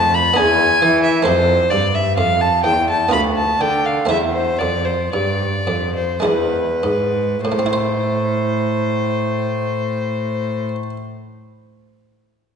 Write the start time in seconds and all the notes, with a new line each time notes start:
Already playing: F2 B3 F4 A4 A5
0.15 B5
0.34 E2 B3 D4 G#4 G#5
0.38 E2
0.82 E3
1.03 E5
1.22 F2 A3 C4 A4 C5
1.27 F2
1.70 G2 D5
1.95 E5
2.17 F2 F5
2.41 A5
2.64 E2 G5
2.90 A5
3.09 D2 B3 D4 F4 B5
3.13 D2
3.37 A5
3.60 D3 G5
3.85 F5
4.05 A3 C4 E4 E5
4.10 E2
4.33 C5
4.59 F2 D5
4.85 C5
5.13 G2 D5
5.67 F2
5.96 C5
6.20 G#3 D4 E4 B4
6.25 E2
6.83 G#2
7.45 A2 C5
7.52 A3
7.59 C4
7.66 E4
7.73 C5